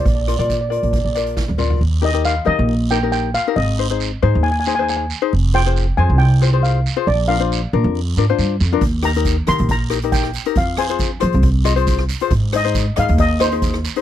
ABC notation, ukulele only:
X:1
M:4/4
L:1/16
Q:"Swing 16ths" 1/4=137
K:Eb
V:1 name="Ukulele"
z2 [FBd] [FBd]2 z [FBd]2 z2 [FBd]2 z2 [FBd]2 | z2 [EGB] [EGB]2 z [EGB]2 z2 [EGB] [EGB]2 z2 [EGB] | z2 [EAc] [EAc]2 z [EAc]2 z2 [EAc] [EAc]2 z2 [EAc] | z2 [FAc] [FAc]2 z [FAc]2 z2 [FAc] [FAc]2 z2 [FAc] |
z2 [DFB] [DFc]2 z [DFB]2 z2 [DFB] [DFc]2 z2 [DFB] | z2 [EGB] [EGB]2 z [EGB]2 z2 [EGB] [EGB]2 z2 [EGB] | z2 [FAc] [FAc]2 z [FAc]2 z2 [FAe] [FAc]2 z2 [FAc] | z2 [EAc] [EAc]2 z [EAe]2 z2 [EAe] [EAc]2 z2 [EAc] |]